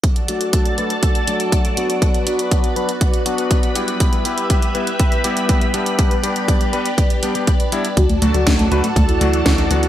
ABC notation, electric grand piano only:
X:1
M:4/4
L:1/16
Q:1/4=121
K:D
V:1 name="Electric grand piano"
z2 [F,A,DF]4 [F,A,DB] z3 [F,A,DF]4 [F,B,DF]2- | [F,B,DF]2 [F,B,DF]4 [F,B,DB] z3 [F,B,DF]4 [G,B,EG]2- | [G,B,EG]2 [G,B,EG]4 [G,B,EB] z3 [G,B,EG]4 [G,B,DG]2- | [G,B,DG]2 [G,B,DG]4 [G,B,DB] z3 [G,B,DG] [G,B,DG] z2 [G,B,DE] z |
z2 [F,A,DF]4 [F,A,DB] z3 [F,A,DF]4 [F,B,DF]2 |]